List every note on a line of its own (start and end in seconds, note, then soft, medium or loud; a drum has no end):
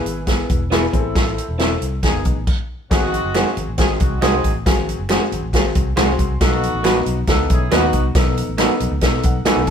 0.00 0.16 B3 medium
0.00 0.16 E4 medium
0.00 0.69 E4 medium
0.00 0.16 G#4 medium
0.00 0.69 G#4 medium
0.00 0.69 B4 medium
0.05 0.41 G#1 medium
0.05 closed hi-hat medium
0.27 0.60 B3 medium
0.27 0.60 E4 medium
0.27 0.60 G#4 medium
0.27 kick medium
0.27 snare medium
0.27 closed hi-hat medium
0.49 0.85 E1 medium
0.49 kick loud
0.49 closed hi-hat medium
0.70 0.83 B3 medium
0.70 0.93 B3 medium
0.70 0.83 E4 medium
0.70 0.92 E4 medium
0.70 0.93 G#4 medium
0.70 0.84 G#4 medium
0.70 0.84 B4 loud
0.70 snare loud
0.70 closed hi-hat medium
0.93 1.38 A1 medium
0.93 1.79 C4 medium
0.93 1.46 C4 medium
0.93 1.79 E4 medium
0.93 1.46 E4 medium
0.93 0.99 G#4 medium
0.93 1.79 A4 medium
0.93 kick medium
0.93 closed hi-hat medium
0.99 1.49 A4 medium
1.15 kick loud
1.15 snare loud
1.15 closed hi-hat medium
1.38 closed hi-hat medium
1.49 1.75 E1 medium
1.58 1.71 C4 medium
1.58 1.92 C4 medium
1.58 1.71 E4 medium
1.58 1.92 E4 medium
1.58 1.72 A4 medium
1.58 1.93 A4 medium
1.58 1.72 C5 medium
1.58 snare loud
1.58 closed hi-hat medium
1.82 1.99 C2 medium
1.82 closed hi-hat medium
2.03 2.12 G#1 medium
2.03 2.36 B3 medium
2.03 2.25 B3 medium
2.03 2.25 D#4 medium
2.03 2.36 D#4 medium
2.03 2.25 G#4 medium
2.03 2.37 G#4 medium
2.03 kick medium
2.03 snare medium
2.03 closed hi-hat medium
2.14 2.23 F#1 medium
2.25 2.34 B1 medium
2.25 kick medium
2.25 closed hi-hat medium
2.36 2.45 A1 medium
2.47 kick medium
2.47 crash medium
2.91 3.18 G#1 loud
2.91 3.24 C4 medium
2.91 3.53 C4 medium
2.91 3.53 D#4 loud
2.91 3.24 F#4 medium
2.91 3.53 F#4 loud
2.91 3.24 G#4 medium
2.91 kick loud
2.91 snare loud
2.91 closed hi-hat medium
3.01 high conga medium
3.12 closed hi-hat medium
3.12 high conga medium
3.24 3.42 F#1 medium
3.34 3.47 G#3 medium
3.34 3.68 C4 medium
3.34 3.47 D#4 medium
3.34 3.68 F#4 medium
3.34 3.47 F#4 medium
3.34 3.68 G#4 medium
3.34 3.47 C5 medium
3.34 finger snap medium
3.34 snare loud
3.34 closed hi-hat medium
3.45 high conga medium
3.57 3.66 G#1 medium
3.57 closed hi-hat medium
3.57 muted conga soft
3.57 high conga medium
3.57 low conga medium
3.68 3.77 A1 medium
3.78 3.96 G#1 medium
3.78 4.11 C4 medium
3.78 3.96 C4 medium
3.78 3.96 D#4 medium
3.78 4.12 F#4 medium
3.78 3.96 G#4 medium
3.78 4.12 G#4 medium
3.78 kick medium
3.78 snare loud
3.78 closed hi-hat medium
3.78 muted conga soft
4.00 4.18 C2 medium
4.00 4.18 C4 medium
4.00 4.18 D#4 medium
4.00 4.18 F#4 medium
4.00 kick loud
4.00 closed hi-hat medium
4.21 4.40 C2 loud
4.21 4.34 G#3 medium
4.21 4.53 C4 medium
4.21 4.55 C4 medium
4.21 4.53 D#4 medium
4.21 4.34 D#4 medium
4.21 4.55 F#4 medium
4.21 4.35 F#4 medium
4.21 4.53 G#4 medium
4.21 4.55 G#4 medium
4.21 4.35 C5 medium
4.21 finger snap loud
4.21 snare loud
4.21 closed hi-hat medium
4.21 muted conga soft
4.21 high conga medium
4.33 low conga medium
4.44 4.62 A1 medium
4.44 kick medium
4.44 closed hi-hat medium
4.44 high conga medium
4.44 low conga medium
4.66 4.93 G#1 medium
4.66 4.99 C4 medium
4.66 4.99 F#4 medium
4.66 4.99 G#4 medium
4.66 kick loud
4.66 snare loud
4.66 closed hi-hat medium
4.76 high conga medium
4.87 closed hi-hat medium
4.87 high conga medium
4.99 5.17 F#1 loud
5.09 5.21 G#3 medium
5.09 5.42 C4 medium
5.09 5.22 D#4 medium
5.09 5.42 F#4 medium
5.09 5.22 F#4 medium
5.09 5.43 G#4 medium
5.09 5.22 C5 medium
5.09 finger snap loud
5.09 snare loud
5.09 closed hi-hat medium
5.09 muted conga soft
5.21 high conga medium
5.32 5.41 G#1 medium
5.32 closed hi-hat medium
5.32 muted conga soft
5.32 high conga medium
5.32 low conga medium
5.43 5.51 A1 medium
5.53 5.71 G#1 medium
5.53 5.59 A3 medium
5.53 5.86 F#4 medium
5.53 5.87 G#4 medium
5.53 kick medium
5.53 snare loud
5.53 closed hi-hat medium
5.53 muted conga soft
5.59 5.89 C4 medium
5.75 5.93 C2 medium
5.75 kick loud
5.75 closed hi-hat medium
5.96 6.15 C2 medium
5.96 6.09 G#3 medium
5.96 6.30 C4 medium
5.96 6.09 D#4 medium
5.96 6.30 F#4 medium
5.96 6.09 F#4 medium
5.96 6.30 G#4 medium
5.96 6.10 C5 loud
5.96 6.38 C6 medium
5.96 finger snap loud
5.96 snare loud
5.96 closed hi-hat medium
5.96 muted conga soft
5.96 high conga medium
6.09 low conga medium
6.19 6.37 C2 medium
6.19 kick medium
6.19 closed hi-hat medium
6.19 muted conga soft
6.19 high conga medium
6.19 low conga medium
6.40 6.67 B1 loud
6.40 7.02 B3 medium
6.40 6.74 B3 medium
6.40 7.02 D#4 medium
6.40 6.74 D#4 medium
6.40 7.02 F#4 loud
6.40 6.74 A4 medium
6.40 kick loud
6.40 snare loud
6.40 closed hi-hat medium
6.51 high conga medium
6.62 closed hi-hat medium
6.62 muted conga soft
6.62 high conga medium
6.74 7.00 A1 medium
6.83 6.96 A3 medium
6.83 7.17 B3 medium
6.83 6.96 D#4 medium
6.83 7.17 D#4 medium
6.83 6.97 F#4 medium
6.83 7.18 F#4 loud
6.83 6.97 B4 medium
6.83 finger snap medium
6.83 snare loud
6.83 closed hi-hat medium
6.96 high conga medium
7.06 7.24 B1 medium
7.06 closed hi-hat medium
7.06 high conga medium
7.06 low conga medium
7.27 7.45 C#2 medium
7.27 7.61 B3 medium
7.27 7.46 D#4 medium
7.27 7.61 D#4 medium
7.27 7.46 F#4 medium
7.27 7.46 A4 medium
7.27 7.61 A4 medium
7.27 kick medium
7.27 snare loud
7.27 closed hi-hat medium
7.50 7.68 B1 medium
7.50 7.68 C#4 medium
7.50 7.68 E4 medium
7.50 7.68 G#4 medium
7.50 kick loud
7.50 closed hi-hat medium
7.71 7.89 D#2 medium
7.71 7.83 A3 medium
7.71 8.04 B3 medium
7.71 8.03 B3 medium
7.71 8.05 D#4 medium
7.71 7.84 D#4 medium
7.71 8.03 D#4 medium
7.71 8.05 F#4 loud
7.71 7.84 F#4 medium
7.71 8.03 F#4 loud
7.71 7.84 B4 medium
7.71 finger snap medium
7.71 snare loud
7.71 closed hi-hat medium
7.71 muted conga soft
7.71 high conga medium
7.82 low conga medium
7.93 8.11 C2 medium
7.93 kick medium
7.93 closed hi-hat medium
7.93 muted conga soft
7.93 high conga soft
7.93 low conga medium
8.15 8.42 B1 loud
8.15 8.48 B3 medium
8.15 8.48 D#4 medium
8.15 8.49 A4 medium
8.15 kick loud
8.15 snare loud
8.15 closed hi-hat loud
8.25 high conga medium
8.37 closed hi-hat medium
8.37 muted conga soft
8.37 high conga medium
8.48 8.66 A1 medium
8.58 8.70 A3 medium
8.58 8.92 B3 medium
8.58 8.71 D#4 medium
8.58 8.92 D#4 medium
8.58 8.71 F#4 loud
8.58 8.92 A4 medium
8.58 8.71 B4 medium
8.58 finger snap loud
8.58 snare loud
8.58 closed hi-hat medium
8.58 muted conga soft
8.69 high conga medium
8.80 8.90 B1 medium
8.80 closed hi-hat medium
8.80 muted conga soft
8.80 high conga medium
8.80 low conga medium
8.91 9.01 C#2 medium
9.01 9.20 B2 medium
9.01 9.35 B3 medium
9.01 9.36 D#4 medium
9.01 9.36 A4 medium
9.01 kick medium
9.01 snare loud
9.01 closed hi-hat medium
9.23 9.42 B1 medium
9.23 9.45 F#5 medium
9.23 kick loud
9.23 closed hi-hat medium
9.45 9.58 A3 medium
9.45 9.70 B3 medium
9.45 9.70 D#4 medium
9.45 9.58 D#4 medium
9.45 9.59 F#4 medium
9.45 9.70 A4 medium
9.45 9.59 B4 medium
9.45 9.67 G#5 medium
9.45 finger snap loud
9.45 muted fingered electric bass stroke soft
9.45 snare loud
9.45 closed hi-hat medium
9.45 muted conga soft
9.45 high conga medium
9.56 9.66 B1 medium
9.56 low conga medium
9.67 closed hi-hat medium